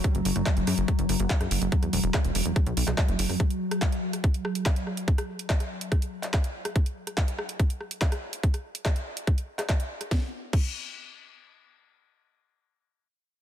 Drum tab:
CC |----------------|----------------|----------------|----------------|
HH |xxoxxxoxxxoxxxox|xxoxxxoxxxoxxxoo|xx-xxx-xxx-xxx-x|xx-xxx-xxx-xxx-x|
CP |----x-------x---|----x------xx---|----x-------x---|----x------xx---|
SD |---r--r---r--r--|-r--r---r--r---r|r--r---r--r---r-|-r---r--r---r--r|
BD |o---o---o---o---|o---o---o---o---|o---o---o---o---|o---o---o---o---|

CC |----------------|----------------|----x-----------|----------------|
HH |xx-xxx-xxx-xxx-x|xx-xxx-xxx-xxx-x|----------------|----------------|
CP |----x-------x---|----x------xx---|----------------|----------------|
SD |---r--r---r--r--|-r--r---r--r---r|o---------------|----------------|
BD |o---o---o---o---|o---o---o---o---|o---o-----------|----------------|